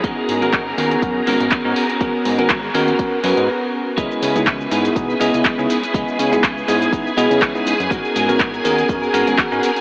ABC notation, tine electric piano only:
X:1
M:4/4
L:1/16
Q:"Swing 16ths" 1/4=122
K:C#dor
V:1 name="Tine electric piano"
[B,CFA]3 [B,CFA] z2 [B,CFA]2 [B,CFA] z [B,CFA]3 [B,CFA] z2 | [B,CFA]3 [B,CFA] z2 [B,CFA]2 [B,CFA] z [B,CFB]2 z4 | [B,EGd]3 [B,DEG] z2 [B,DEG]2 [B,DEG] z [B,EGd]3 [B,DEG] z2 | [B,EGd]3 [B,DEG] z2 [B,DEG]2 [B,DEG] z [B,EGd]3 [B,DEG] z2 |
[B,CFA]3 [B,CFA] z2 [B,CFA]2 [B,CFA] z [B,CFA]3 [B,CFA] z2 |]